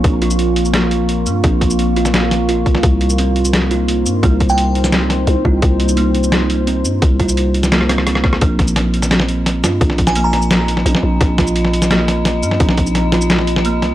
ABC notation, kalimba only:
X:1
M:4/4
L:1/8
Q:1/4=172
K:Bbdor
V:1 name="Kalimba"
z F z2 B,4 | C z2 F z2 F z | z2 C z2 F z2 | B,4 C z2 F |
z2 B,4 C z | z F z2 B, C z B, | B,4 C z2 F | z2 B,4 C z |
z F z2 B,4 | C z2 F z2 B,2 |]